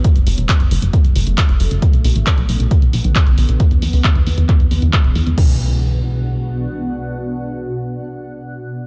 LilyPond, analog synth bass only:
\new Staff \with { instrumentName = "Analog synth bass" } { \clef bass \time 4/4 \key b \dorian \tempo 4 = 135 r16 fis,,16 fis,,16 e,,16 r16 fis,,16 fis,,16 fis,,16 r16 fis,,16 fis,,16 fis,,16 r16 fis,,16 fis,,16 fis,,16 | r16 b,,16 b,,16 a,,16 r16 b,,16 b,,16 b,,16 r16 b,,16 b,,16 b,,16 r16 b,,16 b,,16 b,,16 | r16 e,16 e,16 d,16 r16 e,16 e,16 e,16 r16 e,16 e,16 e,16 r16 e,,16 e,16 e,16 | b,,2. r4 |
r1 | }